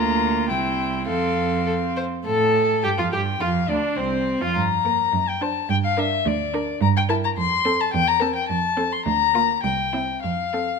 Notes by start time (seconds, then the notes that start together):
Already playing: D2 A#3 F4 A#5
0.49 C2 C4 E4 G5
1.07 F2 C4 A4 F5
1.66 A4
1.97 C5
2.26 A2 A4 A5
2.84 G2 G4 G5
2.98 F2 F4 F5
3.12 G2 G4 G5
3.40 F2 F4 F5
3.68 D2 D4 D5
3.96 C2 C4 C5
4.41 F2 F4 F5
4.56 G2 A#5
4.85 A#3 A#4
5.13 F#2
5.29 G5
5.41 D4 C5 A5
5.69 G2 G5
5.85 F5
5.97 D4 A#4 E5
6.26 D2 D5
6.54 D4 A#4
6.81 G2 A#5
6.97 G5
7.09 E4 A#4 A5
7.24 A#5
7.37 F2 C6
7.66 C4 A4
7.80 A5
7.94 E2 G5
8.08 A#5
8.20 C4 A#4 A5
8.36 G5
8.49 F2 A5
8.77 C4 A4
8.92 C6
9.05 D2 A#5
9.34 A#3 F4
9.64 C2 G5
9.93 C4 E4
10.22 F2 F5
10.53 C4 A4